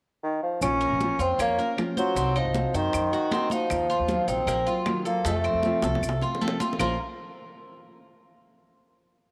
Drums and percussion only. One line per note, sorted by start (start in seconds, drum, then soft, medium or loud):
0.62 high bongo medium
0.62 high conga soft
0.62 claves medium
0.62 maracas medium
0.81 high conga soft
0.81 maracas soft
1.01 high bongo soft
1.01 high conga medium
1.01 maracas soft
1.20 high conga soft
1.20 maracas medium
1.39 high bongo medium
1.39 high conga soft
1.39 claves medium
1.39 maracas medium
1.59 high conga soft
1.59 maracas soft
1.78 high bongo medium
1.78 low bongo medium
1.78 high conga medium
1.78 claves medium
1.78 maracas soft
1.97 high conga medium
1.97 maracas medium
2.17 high bongo medium
2.17 high conga soft
2.17 maracas medium
2.35 high bongo soft
2.35 high conga soft
2.35 claves medium
2.35 maracas soft
2.54 high bongo medium
2.54 high conga medium
2.54 maracas soft
2.73 high bongo soft
2.73 high conga soft
2.73 maracas medium
2.93 high bongo medium
2.93 high conga soft
2.93 claves medium
2.93 maracas medium
3.12 high conga soft
3.12 maracas soft
3.31 high bongo medium
3.31 low bongo medium
3.31 high conga medium
3.31 maracas soft
3.50 high bongo soft
3.50 high conga medium
3.50 maracas medium
3.70 high bongo medium
3.70 high conga soft
3.70 claves medium
3.70 maracas medium
3.89 high conga soft
3.89 maracas soft
4.08 high bongo medium
4.08 high conga medium
4.08 maracas soft
4.28 high conga soft
4.28 maracas medium
4.48 high bongo medium
4.48 high conga soft
4.48 claves medium
4.48 maracas medium
4.67 high conga soft
4.67 maracas soft
4.86 high bongo medium
4.86 low bongo medium
4.86 high conga medium
4.86 claves medium
4.86 maracas soft
5.06 maracas medium
5.25 high bongo medium
5.25 high conga soft
5.25 maracas medium
5.44 high bongo soft
5.44 high conga soft
5.44 claves medium
5.44 maracas soft
5.63 high bongo medium
5.63 high conga medium
5.63 maracas soft
5.82 high bongo loud
5.82 maracas medium
5.95 high bongo medium
6.02 high conga soft
6.02 claves medium
6.02 maracas medium
6.09 high bongo medium
6.21 low bongo medium
6.21 high conga soft
6.21 maracas soft
6.35 low bongo medium
6.42 high conga medium
6.42 maracas soft
6.48 low bongo medium
6.60 low bongo medium
6.60 high conga medium
6.60 maracas medium
6.73 low bongo medium
6.79 low bongo medium
6.79 low conga loud
6.79 claves medium
6.79 maracas medium